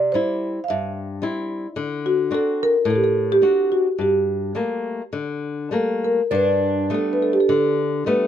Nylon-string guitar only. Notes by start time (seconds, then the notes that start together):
Already playing: C3
0.14 G3 C4 E4
0.70 G2
1.22 G3 C4 E4
1.76 D3
2.31 C4 D4 F#4
2.85 A2
3.42 C4 D4 F#4
3.99 G2
4.55 G3 A3 A#3
5.13 D3
5.71 G3 A3 A#3
6.32 G2
6.90 G3 A3 B3
7.49 D3
8.06 G3 A3 B3